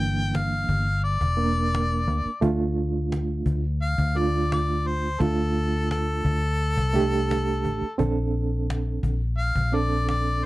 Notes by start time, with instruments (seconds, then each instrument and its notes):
Already playing: fingered electric bass G1, reed electric piano E3 A#3 D4, harmonica G5
0.35 harmonica F5, cajon slap
0.69 fingered electric bass G1, cajon bass
0.86 cajon slap
1.03 harmonica D5, cajon slap
1.21 fingered electric bass E1, cajon bass
1.37 reed electric piano A#3 D4 A#4
1.75 cajon slap
2.08 fingered electric bass D2
2.25 muted fingered electric bass stroke
2.41 fingered electric bass D2, reed electric piano A3 D4 F4, cajon bass
2.77 cajon slap
2.94 cajon slap
3.12 cajon slap
3.46 fingered electric bass D2, cajon bass
3.63 cajon slap
3.82 harmonica F5
3.98 fingered electric bass D2, cajon bass, cajon slap
4.15 reed electric piano A3 D4 F4, harmonica D5
4.52 harmonica D5, cajon slap
4.69 cajon slap
4.87 harmonica C5
5.20 fingered electric bass D2, reed electric piano A3 D4 F4, harmonica A4, cajon bass
5.91 harmonica A4, cajon slap
6.25 fingered electric bass D2, cajon bass
6.77 fingered electric bass C2, cajon bass
6.93 reed electric piano A3 D4 G4, cajon bass
7.31 cajon slap
7.64 fingered electric bass A1, cajon bass
7.82 muted fingered electric bass stroke
7.98 fingered electric bass A#1, reed electric piano C4 D4 A4, cajon bass
8.34 cajon slap
8.52 cajon slap
8.70 cajon slap
9.03 fingered electric bass A#1, cajon bass
9.21 cajon slap
9.38 harmonica F5, cajon slap
9.55 fingered electric bass A#1, cajon bass
9.72 reed electric piano C4 D4 A4, harmonica D5
10.09 harmonica D5, cajon slap
10.25 cajon slap